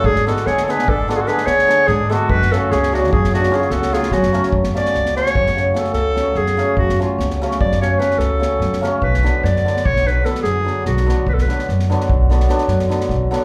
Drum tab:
SD |-ooooooo--o-ooooo-o-o-|-oo-oooo-ooooooooooooo|-ooooooo-oo-ooo-o-ooo-|-oo-oooo-oo-ooo-o-ooo-|
BD |o-------o-------------|o-------o---------o---|o-------o-------------|o-------o-------------|

SD |-oo-oooo-oo-ooo-o-ooo-|-ooooooo--ooooooooo-o-|
BD |o-------o-------------|o-------o---------o---|